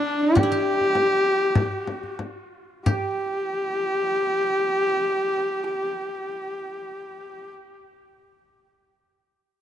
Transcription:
Already playing: guzheng C4 D4 E4 G4, horsehead fiddle D4
0.35 guzheng G4, horsehead fiddle G4, frame drum
0.43 guzheng E4
0.52 guzheng G4
0.81 frame drum
0.95 frame drum
1.55 frame drum
1.87 frame drum
2.03 frame drum
2.19 frame drum
2.86 horsehead fiddle G4, guzheng G4, frame drum

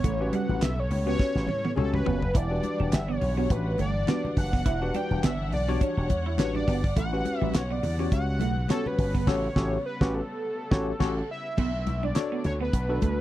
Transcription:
Already playing: string section C#3 G3 B3, analog synth lead C#5
0.04 slap bass A1, clean electric guitar A3, string section A4, kick, closed hi-hat, muted conga, low conga
0.20 tine electric piano C#4 F#4 G4 B4, muted clean electric guitar stroke
0.33 clean electric guitar G3, analog synth lead F#5, closed hi-hat, high conga
0.49 slap bass A1, high conga
0.61 slap bass B1, clean electric guitar B3, analog synth lead E5, snare, clap, closed hi-hat
0.80 analog synth lead C#5
0.90 slap bass C#2, muted clean electric guitar stroke, open hi-hat, muted conga, low conga
1.06 clean electric guitar B3, tine electric piano C#4 F#4 G4 B4, analog synth lead C#5
1.19 clean electric guitar C#4, kick, snare, muted conga
1.35 slap bass A1, muted clean electric guitar stroke, snare
1.47 slap bass A2, high tom, muted conga, high conga
1.65 clean electric guitar B3, high tom
1.76 slap bass C#2, tine electric piano C#4 F#4 G4 C#5, analog synth lead G#4 A4, muted clean electric guitar stroke, mid tom, high conga
1.93 clean electric guitar C#4, analog synth lead B4, mid tom, high conga, low conga
2.05 slap bass F#1, clean electric guitar B3, floor tom, muted conga
2.22 floor tom
2.34 slap bass E1, string section E3 D4 F#5, clean electric guitar E4, analog synth lead D5, kick, closed hi-hat, muted conga, low conga
2.50 tine electric piano D4 F#4 G4 B4
2.63 muted clean electric guitar stroke, closed hi-hat, muted conga, high conga
2.80 slap bass E1, clean electric guitar D4, high conga
2.93 slap bass G1, analog synth lead E5, snare, clap, closed hi-hat, muted conga
3.08 clean electric guitar B3, analog synth lead C#5
3.21 slap bass B1, muted clean electric guitar stroke, open hi-hat, muted conga, low conga
3.37 clean electric guitar B3, tine electric piano D4 F#4 G4 C#5
3.50 slap bass A1, analog synth lead B4, kick, closed hi-hat, muted conga
3.78 slap bass G1, clean electric guitar A3, analog synth lead D5, closed hi-hat, muted conga, high conga
4.07 clean electric guitar B3, tine electric piano D4 F#4 G4 B4, snare, clap, closed hi-hat, high conga
4.24 muted clean electric guitar stroke, high conga, low conga
4.36 slap bass F#1, analog synth lead F#5, kick, open hi-hat, muted conga
4.53 clean electric guitar B3, kick
4.65 slap bass E1, clean electric guitar E4, kick, closed hi-hat, low conga
4.82 tine electric piano D4 F#4 G4 B4, muted clean electric guitar stroke
4.94 clean electric guitar D4, analog synth lead G5, closed hi-hat, muted conga, high conga
5.11 slap bass E1, high conga
5.23 slap bass G1, clean electric guitar B3, analog synth lead E5, snare, clap, closed hi-hat, muted conga
5.52 slap bass B1, analog synth lead D5, muted clean electric guitar stroke, open hi-hat, low conga
5.68 clean electric guitar B3, tine electric piano D4 F#4 G4 C#5
5.81 clean electric guitar D4, analog synth lead C#5, kick, closed hi-hat, muted conga
5.97 slap bass E1, muted clean electric guitar stroke
6.09 slap bass E2, kick, closed hi-hat, high conga
6.26 clean electric guitar E4
6.38 slap bass A1, tine electric piano D4 F#4 G4 B4, analog synth lead C#5, muted clean electric guitar stroke, snare, clap, closed hi-hat, muted conga, high conga
6.55 clean electric guitar D4, analog synth lead D5, high conga, low conga
6.68 slap bass G1, clean electric guitar B3, kick, open hi-hat
6.84 kick
6.96 slap bass A1, string section C#3 G3 B3, clean electric guitar A3, analog synth lead F#5, kick, closed hi-hat, low conga
7.13 tine electric piano C#4 F#4 G4 B4
7.25 muted clean electric guitar stroke, closed hi-hat, high conga
7.39 slap bass A1, clean electric guitar G3, analog synth lead E5, high conga
7.54 slap bass B1, analog synth lead C#5, snare, clap, closed hi-hat, muted conga
7.70 clean electric guitar B3, analog synth lead D5
7.83 slap bass E2, muted clean electric guitar stroke, open hi-hat, low conga
7.99 clean electric guitar B3, tine electric piano C#4 F#4 G4 C#5
8.12 slap bass C#2, analog synth lead F#5, kick, closed hi-hat, muted conga
8.40 slap bass B1, clean electric guitar A3, closed hi-hat, muted conga, high conga
8.68 clean electric guitar B3, tine electric piano C#4 F#4 G4 C#5, analog synth lead A4, snare, clap, closed hi-hat, muted conga, high conga
8.86 analog synth lead B4, muted clean electric guitar stroke, high conga, low conga
8.98 slap bass G1, kick, open hi-hat
9.14 clean electric guitar B3, kick
9.27 slap bass A1, tine electric piano C#4 F#4 G4 A4, analog synth lead C#5, kick, snare, crash
9.56 slap bass A1, tine electric piano C#4 F#4 G4 A4, kick, snare
9.86 analog synth lead B4
10.01 slap bass A1, tine electric piano C#4 F#4 G4 B4, kick, snare
10.15 analog synth lead A4
10.71 slap bass A1, tine electric piano C#4 F#4 G4 C#5, kick, snare
11.00 slap bass A1, tine electric piano C#4 F#4 G4 C#5, kick, snare, crash
11.31 analog synth lead E5
11.57 slap bass B1, string section D3 A3 B3 D4, clean electric guitar B3, kick, crash, muted conga, low conga
11.87 slap bass B1, muted clean electric guitar stroke, closed hi-hat, muted conga, high conga
12.03 clean electric guitar D4, analog synth lead D5, high conga
12.15 tine electric piano D4 F#4 A4 C#5, snare, clap, closed hi-hat, muted conga
12.32 clean electric guitar B3
12.44 slap bass D2, analog synth lead C#5, muted clean electric guitar stroke, closed hi-hat, low conga
12.61 clean electric guitar B3, analog synth lead B4
12.73 slap bass B1, kick, closed hi-hat, muted conga
12.89 tine electric piano D4 F#4 A4 B4
13.01 slap bass D2, clean electric guitar A3, kick, closed hi-hat, high conga

